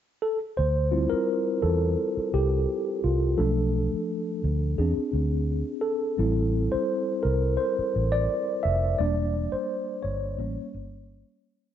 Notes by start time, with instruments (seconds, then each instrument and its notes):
0.22 tine electric piano A4
0.57 fingered electric bass D2, tine electric piano C5
0.91 tine electric piano G3 C4 E4 F4
1.10 tine electric piano A#4, muted fingered electric bass stroke
1.62 fingered electric bass E2, tine electric piano A4
2.17 muted fingered electric bass stroke
2.34 fingered electric bass C2, tine electric piano G4
3.04 fingered electric bass C2, tine electric piano F4
3.37 fingered electric bass B1, tine electric piano F3 A3 D4 A4
3.93 muted fingered electric bass stroke
4.44 fingered electric bass D2
4.78 fingered electric bass E2, tine electric piano C4 D4 G#4
4.98 muted fingered electric bass stroke
5.13 fingered electric bass D2
5.81 tine electric piano A4
6.18 fingered electric bass A1, tine electric piano G3 C4 E4
6.72 tine electric piano C5, muted fingered electric bass stroke
7.23 fingered electric bass C2, tine electric piano A#4
7.57 tine electric piano C5
7.79 muted fingered electric bass stroke
7.96 fingered electric bass A1
8.12 tine electric piano D5
8.63 fingered electric bass F1, tine electric piano E5
8.99 fingered electric bass E1, tine electric piano G3 A#3 D4 D5
9.52 tine electric piano C5, muted fingered electric bass stroke
10.03 fingered electric bass G1, tine electric piano C#5
10.38 fingered electric bass A1, tine electric piano G3 A#3 C#4
10.59 muted fingered electric bass stroke
10.74 fingered electric bass G1